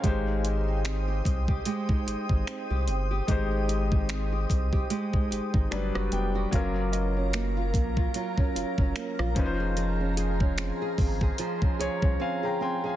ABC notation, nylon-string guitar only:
X:1
M:4/4
L:1/16
Q:"Swing 16ths" 1/4=74
K:Ab
V:1 name="Nylon-string guitar"
[A,G] E G E C G C G [A,G] E G E C G C G | [A,G] E G E C G C G [A,G] E G E G, ^F =B, F | [_G,F] D F D B, F B, F [G,F] D F D B, F F, A | [F,A] D A D C A C A [F,A] D A D C A C A |]